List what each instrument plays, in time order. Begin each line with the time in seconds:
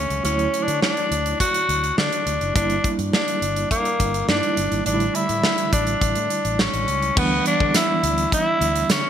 Already playing: tine electric piano D3 F#3 A3 C#4, tenor saxophone C#4
0.10 fretless electric bass C#2, closed hi-hat
0.23 fretless electric bass D2, tine electric piano F#3 A3 E4 C#5, tenor saxophone C#4, closed hi-hat
0.39 closed hi-hat
0.54 closed hi-hat
0.63 tenor saxophone D4
0.68 fretless electric bass D3, closed hi-hat
0.82 tenor saxophone D4, snare
0.97 closed hi-hat
1.11 fretless electric bass D2, closed hi-hat
1.26 closed hi-hat
1.40 tenor saxophone F#4, kick, closed hi-hat
1.54 closed hi-hat
1.69 fretless electric bass D2, closed hi-hat
1.84 closed hi-hat
1.98 fretless electric bass D3, tenor saxophone D4, snare
2.12 closed hi-hat
2.26 fretless electric bass D2, closed hi-hat
2.41 fretless electric bass F#1, closed hi-hat
2.54 fretless electric bass G1, tine electric piano G3 A#3 D4 E4, tenor saxophone D4, kick, closed hi-hat
2.70 closed hi-hat
2.84 kick, closed hi-hat
2.99 fretless electric bass G2, closed hi-hat
3.13 tenor saxophone D4, snare
3.28 closed hi-hat
3.42 fretless electric bass G1, closed hi-hat
3.56 closed hi-hat
3.71 tenor saxophone A#3, kick, closed hi-hat
3.85 closed hi-hat
4.00 fretless electric bass G1, kick, closed hi-hat
4.14 closed hi-hat
4.28 fretless electric bass G2, tine electric piano G3 A#3 D4 D#4, tenor saxophone D4, snare
4.35 tine electric piano E4
4.43 closed hi-hat
4.57 fretless electric bass G1, closed hi-hat
4.72 fretless electric bass G#1, closed hi-hat
4.85 fretless electric bass A1, tine electric piano D3 G3 A3 D#4, tenor saxophone D4, closed hi-hat
4.94 tine electric piano E4
5.00 closed hi-hat
5.15 tenor saxophone E4, closed hi-hat
5.29 fretless electric bass A2, closed hi-hat
5.43 snare
5.58 closed hi-hat
5.73 fretless electric bass A1, tenor saxophone D4, kick, closed hi-hat
5.87 closed hi-hat
6.01 fretless electric bass A1, kick, closed hi-hat
6.15 fretless electric bass A2, closed hi-hat
6.30 closed hi-hat
6.45 fretless electric bass A1, closed hi-hat
6.59 tenor saxophone C#4, snare
6.74 fretless electric bass A1, closed hi-hat
6.88 fretless electric bass C#2, closed hi-hat
7.02 closed hi-hat
7.15 fretless electric bass D2, tine electric piano E3 G3 B3 D4, tenor saxophone B3, kick, crash
7.46 tenor saxophone D4, closed hi-hat
7.60 fretless electric bass D3, kick
7.74 tenor saxophone E4, snare, closed hi-hat, tambourine
8.03 fretless electric bass D2, closed hi-hat
8.18 closed hi-hat
8.32 tenor saxophone E4, kick, closed hi-hat
8.61 fretless electric bass D2, closed hi-hat
8.76 closed hi-hat
8.89 fretless electric bass D3, tenor saxophone C#4, snare, closed hi-hat, tambourine